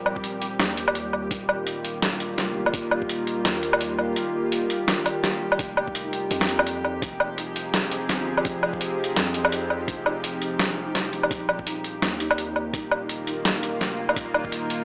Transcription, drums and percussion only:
0.06 low woodblock
0.16 kick
0.24 closed hi-hat
0.42 closed hi-hat
0.60 snare, closed hi-hat
0.77 closed hi-hat
0.88 low woodblock
0.95 closed hi-hat
1.13 low woodblock
1.31 kick, closed hi-hat
1.49 low woodblock
1.67 closed hi-hat
1.85 closed hi-hat
2.02 snare, closed hi-hat
2.20 closed hi-hat
2.38 snare, closed hi-hat
2.66 low woodblock
2.74 kick, closed hi-hat
2.91 low woodblock
3.02 kick
3.09 closed hi-hat
3.27 closed hi-hat
3.45 snare, closed hi-hat
3.63 closed hi-hat
3.73 low woodblock
3.81 closed hi-hat
3.99 low woodblock
4.16 closed hi-hat
4.52 closed hi-hat
4.70 closed hi-hat
4.88 snare, closed hi-hat
5.06 closed hi-hat, low woodblock
5.24 snare, closed hi-hat
5.52 low woodblock
5.59 kick, closed hi-hat
5.77 low woodblock
5.87 kick
5.95 closed hi-hat
6.13 closed hi-hat
6.31 closed hi-hat
6.41 snare
6.49 closed hi-hat
6.59 low woodblock
6.67 closed hi-hat
6.85 low woodblock
7.02 kick, closed hi-hat
7.20 low woodblock
7.38 closed hi-hat
7.56 closed hi-hat
7.74 snare, closed hi-hat
7.91 closed hi-hat
8.09 snare, closed hi-hat
8.37 low woodblock
8.45 kick, closed hi-hat
8.63 low woodblock
8.73 kick
8.81 closed hi-hat
9.04 closed hi-hat
9.16 snare, closed hi-hat
9.34 closed hi-hat
9.45 low woodblock
9.52 closed hi-hat
9.70 low woodblock
9.88 kick, closed hi-hat
10.06 low woodblock
10.24 closed hi-hat
10.42 closed hi-hat
10.59 snare, closed hi-hat
10.95 snare, closed hi-hat
11.13 closed hi-hat
11.23 low woodblock
11.31 kick, closed hi-hat
11.49 low woodblock
11.59 kick
11.67 closed hi-hat
11.84 closed hi-hat
12.02 snare, closed hi-hat
12.20 closed hi-hat
12.31 low woodblock
12.38 closed hi-hat
12.56 low woodblock
12.74 kick, closed hi-hat
12.91 low woodblock
13.09 closed hi-hat
13.27 closed hi-hat
13.45 snare, closed hi-hat
13.63 closed hi-hat
13.81 snare, closed hi-hat
14.09 low woodblock
14.16 kick, closed hi-hat
14.34 low woodblock
14.45 kick
14.52 closed hi-hat
14.70 closed hi-hat

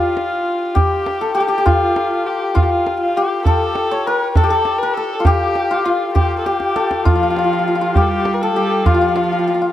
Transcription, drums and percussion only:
0.17 tombak tek
0.76 tombak dum
1.06 tombak tek
1.67 tombak dum
1.96 tombak tek
2.56 tombak dum
2.87 tombak tek
3.46 tombak dum
3.75 tombak tek
4.36 tombak dum
4.65 tombak tek
5.25 tombak dum
5.55 tombak tek
5.86 tombak ka
6.16 tombak dum
6.46 tombak tek
6.60 tombak ka
6.76 tombak tek
6.91 tombak ka
7.06 tombak dum
7.36 tombak tek
7.96 tombak dum
8.25 tombak tek
8.86 tombak dum
9.16 tombak tek

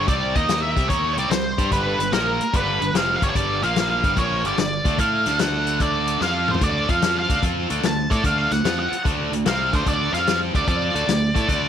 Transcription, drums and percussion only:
0.08 kick, closed hi-hat
0.36 kick, closed hi-hat
0.49 snare, closed hi-hat
0.77 kick, closed hi-hat
0.90 kick, closed hi-hat
1.18 closed hi-hat
1.31 snare, closed hi-hat
1.58 kick, closed hi-hat
1.72 kick, closed hi-hat
2.00 closed hi-hat
2.13 snare, closed hi-hat
2.41 closed hi-hat
2.54 kick, closed hi-hat
2.82 closed hi-hat
2.95 snare, closed hi-hat
3.22 kick, closed hi-hat
3.35 kick, closed hi-hat
3.63 closed hi-hat
3.76 snare, closed hi-hat
4.04 kick, closed hi-hat
4.17 kick, closed hi-hat
4.45 closed hi-hat
4.58 snare, closed hi-hat
4.85 kick, closed hi-hat
4.98 kick, closed hi-hat
5.26 snare, closed hi-hat
5.39 snare, closed hi-hat
5.67 closed hi-hat
5.80 kick, closed hi-hat
6.07 closed hi-hat
6.21 snare
6.48 mid tom
6.54 floor tom
6.61 kick, closed hi-hat
6.89 kick, closed hi-hat
7.02 snare, closed hi-hat
7.30 kick, closed hi-hat
7.43 kick, closed hi-hat
7.70 closed hi-hat
7.83 snare, closed hi-hat
8.11 kick, closed hi-hat
8.24 kick, closed hi-hat
8.51 snare, closed hi-hat
8.65 snare, closed hi-hat
8.93 closed hi-hat
9.05 kick, closed hi-hat
9.33 closed hi-hat
9.46 snare, closed hi-hat
9.73 kick, closed hi-hat
9.86 kick, closed hi-hat
10.14 snare, closed hi-hat
10.27 snare, closed hi-hat
10.55 kick, closed hi-hat
10.68 kick, closed hi-hat
10.96 closed hi-hat
11.08 snare, closed hi-hat
11.36 kick, closed hi-hat
11.49 kick, closed hi-hat

